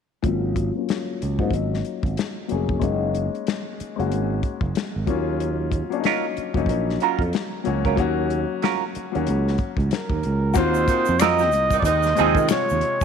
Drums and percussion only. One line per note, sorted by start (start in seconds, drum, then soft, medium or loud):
0.24 kick medium
0.24 closed hi-hat medium
0.56 kick medium
0.56 closed hi-hat medium
0.89 snare medium
0.89 closed hi-hat medium
1.22 closed hi-hat medium
1.39 kick medium
1.51 kick medium
1.51 closed hi-hat medium
1.74 snare soft
1.85 closed hi-hat soft
2.03 kick medium
2.03 closed hi-hat soft
2.17 snare medium
2.17 closed hi-hat medium
2.49 closed hi-hat medium
2.69 kick medium
2.82 kick medium
2.82 closed hi-hat medium
3.15 closed hi-hat medium
3.35 closed hi-hat soft
3.47 snare medium
3.47 closed hi-hat medium
3.80 closed hi-hat medium
4.00 closed hi-hat soft
4.12 closed hi-hat medium
4.43 kick medium
4.43 closed hi-hat soft
4.61 kick medium
4.75 snare medium
4.75 closed hi-hat medium
5.07 kick medium
5.07 closed hi-hat medium
5.40 closed hi-hat medium
5.72 kick medium
5.72 closed hi-hat medium
5.92 closed hi-hat soft
6.04 snare medium
6.04 closed hi-hat medium
6.37 closed hi-hat medium
6.54 kick medium
6.54 closed hi-hat soft
6.66 kick medium
6.66 closed hi-hat medium
6.90 snare soft
7.00 closed hi-hat soft
7.19 kick medium
7.19 closed hi-hat soft
7.33 snare medium
7.33 closed hi-hat medium
7.65 closed hi-hat medium
7.85 kick medium
7.85 closed hi-hat soft
7.97 kick medium
7.97 closed hi-hat medium
8.30 closed hi-hat medium
8.62 snare medium
8.62 closed hi-hat medium
8.95 closed hi-hat medium
9.15 closed hi-hat soft
9.27 closed hi-hat medium
9.48 snare soft
9.58 kick medium
9.58 closed hi-hat soft
9.77 kick medium
9.77 closed hi-hat soft
9.91 snare medium
9.91 closed hi-hat medium
10.09 kick medium
10.23 closed hi-hat medium
10.54 kick loud
10.54 closed hi-hat medium
10.54 shaker medium
10.74 shaker soft
10.88 kick medium
10.88 closed hi-hat medium
10.88 shaker soft
11.05 shaker soft
11.20 finger snap medium
11.20 snare loud
11.20 closed hi-hat medium
11.20 shaker medium
11.38 snare soft
11.38 shaker soft
11.52 closed hi-hat medium
11.52 shaker medium
11.71 kick medium
11.71 closed hi-hat medium
11.71 shaker soft
11.82 kick medium
11.82 closed hi-hat medium
11.82 shaker medium
12.03 snare soft
12.03 shaker soft
12.16 closed hi-hat medium
12.16 shaker soft
12.35 kick medium
12.35 shaker soft
12.49 finger snap medium
12.49 snare loud
12.49 closed hi-hat medium
12.49 shaker medium
12.69 shaker soft
12.81 closed hi-hat medium
13.01 kick medium
13.01 shaker medium